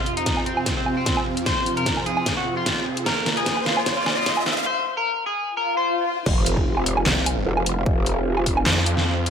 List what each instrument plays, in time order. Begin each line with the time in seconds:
Already playing: supersaw synth F2 C3 C4 F4, clean electric guitar F4, riser
0.06 closed hi-hat
0.17 clean electric guitar D#4, closed hi-hat
0.26 kick, snare, closed hi-hat
0.37 low woodblock
0.46 clean electric guitar C4, closed hi-hat
0.57 low woodblock
0.66 kick, snare, closed hi-hat
0.77 clean electric guitar C4
0.86 low woodblock
0.97 clean electric guitar C4
1.06 kick, snare, closed hi-hat
1.17 low woodblock
1.37 closed hi-hat
1.46 clean electric guitar C5, kick, snare, closed hi-hat
1.66 closed hi-hat
1.77 clean electric guitar A#4, closed hi-hat
1.86 kick, snare, closed hi-hat
1.97 low woodblock
2.06 clean electric guitar G#4, closed hi-hat
2.17 low woodblock
2.26 kick, snare, closed hi-hat
2.37 clean electric guitar F#4
2.57 clean electric guitar F4
2.66 kick, snare, closed hi-hat
2.97 closed hi-hat
3.06 supersaw synth A#3, clean electric guitar A#4, kick, snare, closed hi-hat
3.26 snare, closed hi-hat
3.37 clean electric guitar G#4, closed hi-hat
3.46 kick, snare, closed hi-hat
3.57 low woodblock
3.66 clean electric guitar F4, snare, closed hi-hat
3.77 low woodblock
3.86 kick, snare, closed hi-hat
3.97 clean electric guitar F4
4.06 snare, low woodblock
4.17 clean electric guitar F4
4.26 kick, snare, closed hi-hat
4.37 low woodblock
4.46 snare
4.57 closed hi-hat
4.66 clean electric guitar C5
4.97 clean electric guitar A#4
5.26 clean electric guitar G#4
5.46 swell
5.57 clean electric guitar A#4
5.77 clean electric guitar C5
6.26 wobble bass F1, supersaw synth F3 C4 C5 F5, kick, crash, impact
6.46 closed hi-hat
6.57 kick
6.77 low woodblock
6.86 open hi-hat
6.97 low woodblock
7.06 detuned saw bass C2, snare, clap
7.26 closed hi-hat, low woodblock
7.46 wobble bass F1
7.57 low woodblock
7.66 closed hi-hat
7.86 wobble bass F1, kick
8.06 closed hi-hat
8.37 low woodblock
8.46 kick, open hi-hat
8.57 low woodblock
8.66 detuned saw bass F2, snare, clap
8.86 closed hi-hat
8.97 detuned saw bass F2, snare
9.26 closed hi-hat